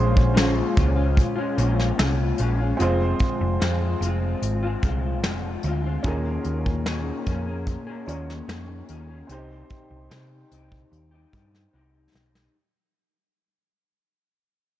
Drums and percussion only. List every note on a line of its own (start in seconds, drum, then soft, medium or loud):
0.17 kick medium
0.37 snare loud
0.37 closed hi-hat medium
0.77 kick medium
0.77 closed hi-hat medium
1.17 kick medium
1.17 closed hi-hat medium
1.58 closed hi-hat medium
1.79 snare soft
1.99 snare loud
1.99 closed hi-hat medium
2.38 closed hi-hat medium
2.80 closed hi-hat medium
3.19 kick medium
3.19 closed hi-hat medium
3.61 snare loud
3.61 closed hi-hat medium
4.02 closed hi-hat medium
4.43 closed hi-hat medium
4.83 kick medium
4.83 closed hi-hat medium
5.24 snare loud
5.24 closed hi-hat medium
5.63 closed hi-hat medium
6.04 kick loud
6.04 closed hi-hat medium
6.44 closed hi-hat medium
6.66 kick medium
6.86 snare medium
6.86 closed hi-hat medium
7.26 kick medium
7.26 closed hi-hat medium
7.67 kick medium
7.67 closed hi-hat medium
8.08 closed hi-hat medium
8.30 snare soft
8.49 snare loud
8.49 closed hi-hat medium
8.89 closed hi-hat medium
9.29 closed hi-hat medium
9.70 kick medium
9.70 closed hi-hat medium
10.11 snare medium
10.11 closed hi-hat medium
10.52 closed hi-hat medium
10.72 kick medium
10.93 closed hi-hat medium
11.33 kick medium
11.33 closed hi-hat medium
11.55 snare soft
12.15 snare medium
12.35 snare medium